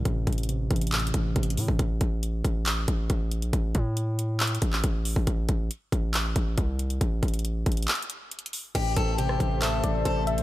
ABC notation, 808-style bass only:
X:1
M:4/4
L:1/16
Q:1/4=138
K:Am
V:1 name="808-style bass" clef=bass
A,,,2 A,,,4 A,,,4 A,,,2 A,,,2 A,, A,,, | A,,,2 A,,,4 A,,,4 A,,,2 A,,,3 _B,,, | A,,,2 A,,8 A,,,2 A,,,3 A,,, | A,,,2 A,,,2 z2 A,,,4 A,,,2 C,,4 |
A,,,2 A,,,4 A,,,2 z8 | A,,,2 A,,,4 A,,,4 A,,,2 A,,,3 _B,,, |]